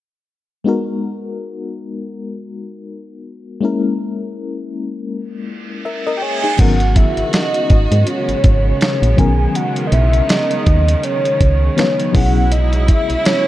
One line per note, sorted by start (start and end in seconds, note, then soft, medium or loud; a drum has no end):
0.64 3.58 G#3 medium
0.64 3.58 B3 medium
0.64 3.59 D#4 medium
0.64 3.59 F#4 medium
0.69 3.60 A#4 medium
3.61 5.80 G#3 medium
3.61 5.80 A#3 medium
3.61 5.81 C#4 medium
3.61 5.81 E4 medium
3.65 5.82 A#4 medium
5.11 reverse cymbal medium
5.85 6.06 A#4 soft
5.85 6.05 E5 medium
6.07 6.22 A#4 medium
6.07 6.21 D#5 medium
6.17 6.24 G5 medium
6.22 6.42 G#4 medium
6.22 6.42 C#5 medium
6.22 6.61 G#5 medium
6.44 6.79 D#4 soft
6.44 6.79 G#4 medium
6.57 7.05 G#1 loud
6.57 12.11 C#3 medium
6.57 9.15 D#3 medium
6.57 9.13 F#3 medium
6.57 12.11 G#3 medium
6.57 9.14 B3 medium
6.57 12.11 B3 medium
6.57 9.14 C#4 medium
6.57 9.16 F#4 medium
6.57 6.96 F#5 loud
6.57 kick loud
6.57 closed hi-hat medium
6.57 crash medium
6.61 9.15 A#4 medium
6.80 closed hi-hat medium
6.96 7.31 E5 medium
6.96 kick medium
6.96 closed hi-hat medium
7.17 7.24 G#1 medium
7.17 closed hi-hat soft
7.33 8.09 D#5 loud
7.33 snare loud
7.33 closed hi-hat medium
7.54 closed hi-hat soft
7.70 7.87 G#1 medium
7.70 kick loud
7.70 closed hi-hat medium
7.92 8.04 G#2 loud
7.92 closed hi-hat medium
8.07 9.20 C#5 loud
8.07 closed hi-hat medium
8.29 8.35 G#1 soft
8.29 closed hi-hat medium
8.44 8.73 G#1 loud
8.44 kick loud
8.44 closed hi-hat medium
8.81 snare loud
8.81 closed hi-hat medium
9.02 9.15 A#1 medium
9.02 closed hi-hat medium
9.16 9.47 B1 loud
9.16 12.12 D#3 medium
9.16 11.74 D#3 medium
9.16 11.73 F#3 medium
9.16 11.73 B3 medium
9.16 11.74 C#4 medium
9.16 9.57 G#5 loud
9.16 kick loud
9.16 closed hi-hat medium
9.20 11.75 A#4 medium
9.55 9.86 F#5 loud
9.55 closed hi-hat medium
9.76 closed hi-hat medium
9.87 9.94 D#5 medium
9.92 10.21 B1 loud
9.92 10.31 E5 medium
9.92 closed hi-hat medium
10.13 closed hi-hat soft
10.29 11.06 D#5 loud
10.29 snare loud
10.29 closed hi-hat medium
10.51 closed hi-hat medium
10.66 10.96 D#2 medium
10.66 kick loud
10.66 closed hi-hat medium
10.88 closed hi-hat medium
11.03 12.16 C#5 loud
11.03 closed hi-hat medium
11.25 closed hi-hat medium
11.41 11.70 C#2 medium
11.41 kick loud
11.41 closed hi-hat medium
11.77 12.11 F#3 soft
11.77 12.12 B3 soft
11.77 12.13 C#4 soft
11.77 12.15 D#4 soft
11.77 12.15 B4 medium
11.77 snare loud
11.77 closed hi-hat medium
12.00 closed hi-hat medium
12.13 12.89 B1 loud
12.13 13.47 C#3 medium
12.13 13.47 F#3 medium
12.13 13.47 G#3 medium
12.13 13.47 B3 medium
12.13 13.47 C#4 medium
12.13 13.47 E4 loud
12.13 13.47 E4 medium
12.13 12.53 F#5 loud
12.13 kick loud
12.13 open hi-hat medium
12.17 13.47 G#4 medium
12.52 12.91 D#5 loud
12.52 closed hi-hat medium
12.73 closed hi-hat medium
12.88 13.28 E5 loud
12.88 kick medium
12.88 closed hi-hat medium
13.10 13.16 B1 soft
13.10 closed hi-hat soft
13.25 13.47 C#5 loud
13.25 snare loud
13.25 closed hi-hat medium